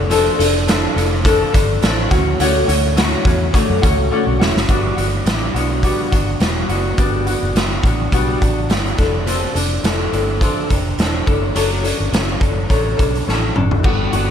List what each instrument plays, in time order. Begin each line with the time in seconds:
Already playing: fingered electric bass F1, nylon-string guitar D4 A4
0.10 nylon-string guitar F3 C4 D4 A4, closed hi-hat
0.39 fingered electric bass F1, nylon-string guitar C4 D4 A4, closed hi-hat
0.67 nylon-string guitar F3 C4 D4 A4, snare, closed hi-hat
0.96 fingered electric bass F1, nylon-string guitar C4 D4 A4, closed hi-hat
1.24 nylon-string guitar F3 C4 D4 A4, kick, closed hi-hat
1.52 fingered electric bass G1, nylon-string guitar C4 D4 A4, kick, closed hi-hat
1.81 fingered electric bass A1, nylon-string guitar F3 C4 D4 A4, snare, closed hi-hat
2.11 fingered electric bass D2, nylon-string guitar A3 C#4 F#4, kick, snare, closed hi-hat
2.39 fingered electric bass D2, nylon-string guitar D3 A3 C#4 F#4, closed hi-hat
2.67 fingered electric bass D2, nylon-string guitar A3 C#4 F#4, closed hi-hat
2.96 nylon-string guitar D3 A3 C#4 F#4, snare, closed hi-hat
3.24 fingered electric bass E2, nylon-string guitar A3 C#4 F#4, kick, closed hi-hat
3.53 nylon-string guitar D3 A3 C#4 F#4, kick, closed hi-hat
3.70 fingered electric bass F#2
3.82 fingered electric bass D2, nylon-string guitar A3 C#4 F#4, kick, closed hi-hat
3.99 fingered electric bass C#2
4.11 nylon-string guitar D3 A3 C#4 F#4
4.27 fingered electric bass B1
4.39 fingered electric bass E1, nylon-string guitar A3 C#4 F#4, snare
4.56 fingered electric bass F#1, snare
4.68 fingered electric bass G1, nylon-string guitar G3 B3 D4 F#4, kick, closed hi-hat
4.96 fingered electric bass G1, nylon-string guitar B3 D4 F#4, closed hi-hat
5.25 fingered electric bass A1, nylon-string guitar G3 B3 D4 F#4, snare, closed hi-hat
5.54 fingered electric bass B1, nylon-string guitar B3 D4 F#4, closed hi-hat
5.82 nylon-string guitar G3 B3 D4 F#4, kick, closed hi-hat
6.11 fingered electric bass G1, nylon-string guitar B3 D4 F#4, kick, closed hi-hat
6.40 fingered electric bass E1, nylon-string guitar G3 B3 D4 F#4, snare, closed hi-hat
6.69 fingered electric bass F#1, nylon-string guitar B3 D4 F#4, closed hi-hat
6.98 fingered electric bass G1, nylon-string guitar G3 B3 D4 F#4, kick, closed hi-hat
7.26 nylon-string guitar B3 D4 F#4, closed hi-hat
7.42 fingered electric bass F#1
7.55 fingered electric bass F#1, nylon-string guitar G3 B3 D4 F#4, snare, closed hi-hat
7.83 fingered electric bass A1, nylon-string guitar B3 D4 F#4, kick, closed hi-hat
8.12 fingered electric bass B1, nylon-string guitar G3 B3 D4 F#4, kick, closed hi-hat
8.41 fingered electric bass A1, nylon-string guitar B3 D4 F#4, kick, closed hi-hat
8.69 fingered electric bass G1, nylon-string guitar G3 B3 D4 F#4, snare, closed hi-hat
8.86 closed hi-hat
8.98 fingered electric bass F1, nylon-string guitar C4 D4 A4, kick, snare, closed hi-hat
9.26 nylon-string guitar F3 C4 D4 A4, closed hi-hat
9.54 fingered electric bass F1, nylon-string guitar C4 D4 A4, closed hi-hat
9.84 fingered electric bass F1, nylon-string guitar F3 C4 D4 A4, snare, closed hi-hat
10.12 fingered electric bass G1, nylon-string guitar C4 D4 A4, closed hi-hat
10.41 nylon-string guitar F3 C4 D4 A4, kick, closed hi-hat
10.70 fingered electric bass F1, nylon-string guitar C4 D4 A4, kick, closed hi-hat
10.98 fingered electric bass E1, nylon-string guitar F3 C4 D4 A4, snare, closed hi-hat
11.26 fingered electric bass F#1, nylon-string guitar C#4 D4 A4, kick, closed hi-hat
11.55 fingered electric bass F#1, nylon-string guitar F#3 C#4 D4 A4, closed hi-hat
11.83 nylon-string guitar C#4 D4 A4, closed hi-hat
12.00 fingered electric bass G1
12.12 fingered electric bass F#1, nylon-string guitar F#3 C#4 D4 A4, snare, closed hi-hat
12.40 fingered electric bass F#1, nylon-string guitar C#4 D4 A4, kick, closed hi-hat
12.69 fingered electric bass A1, nylon-string guitar F#3 C#4 D4 A4, kick, closed hi-hat
12.97 fingered electric bass B1, nylon-string guitar C#4 D4 A4, kick, closed hi-hat
13.15 closed hi-hat
13.27 fingered electric bass A1, nylon-string guitar F#3 C#4 D4 A4, snare
13.55 fingered electric bass F#1, nylon-string guitar C#4 D4 A4, mid tom
13.71 floor tom
13.83 fingered electric bass G1, nylon-string guitar G3 B3 D4 F#4, kick, crash
14.12 fingered electric bass G1, nylon-string guitar B3 D4 F#4, closed hi-hat